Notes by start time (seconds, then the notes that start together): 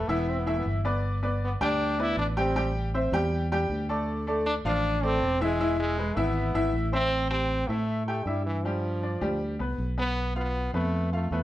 0.08 E1 E3 B3 E4 E5
0.29 C4
0.39 B3
0.46 E3 A3 E4 E5
0.57 B3
0.66 G1
0.85 B3 B4 D5
1.23 B3 B4 D5
1.44 B3
1.61 D2 G3 D4 G4 G5
1.99 B3 E4 B4 D5
2.17 A1 D4
2.37 G3 C4 G4 G5
2.56 G3 G4 G5
2.94 C4 C5 E5
3.12 E2 G3 G4 G5
3.52 G3 G4 G5
3.70 D2
3.89 A3 A4 D5
4.27 A3 A4 D5
4.46 D4
4.65 A1 F3 D4 F4 F5
5.03 A3 C4 A4 D5
5.21 E1
5.41 E3 G#3 E4 E5
5.60 E3 E4 E5
5.80 G#3
5.98 G#3 G#4 B4
6.16 G#1 E3 B3 E4 E5
6.54 G#1 E3 E4 E5
6.74 A1
6.93 C4 C5 E5
7.30 C4 G4 G5
7.68 A2 A3 E4 E5
8.06 A3 G4 G5
8.25 G2 G3 E4 E5
8.46 E3
8.64 F3 G3 G4
9.03 D4 D5
9.21 D2 G3 G4
9.59 C2 B3 B4
9.78 B1
9.98 B3 B4
10.36 B3 F4 F5
10.74 F2 A3 B3 B4
11.13 A3 F4 F5
11.31 E2 A3 B3 B4